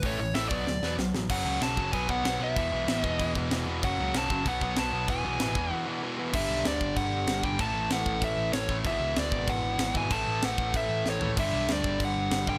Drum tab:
CC |--------|x-x-x-x-|x-x-x-x-|x-x-x-x-|
HH |o-o-----|--------|--------|--------|
SD |--o-oooo|--o---o-|--o---o-|--o---o-|
FT |--------|--------|--------|--------|
BD |o--o----|o--ooo--|o--ooo--|o--ooo--|

CC |x-x-----|x-x-x-x-|x-x-x-x-|x-x-x-x-|
HH |--------|--------|--------|--------|
SD |--o-----|--o---o-|--o---o-|--o---o-|
FT |--------|--------|--------|--------|
BD |o--o----|o--oo--o|o--oo--o|o--oo--o|

CC |x-x-x---|x-x-x-x-|
HH |--------|--------|
SD |--o---o-|--o---o-|
FT |-------o|--------|
BD |o--oo---|o--oo--o|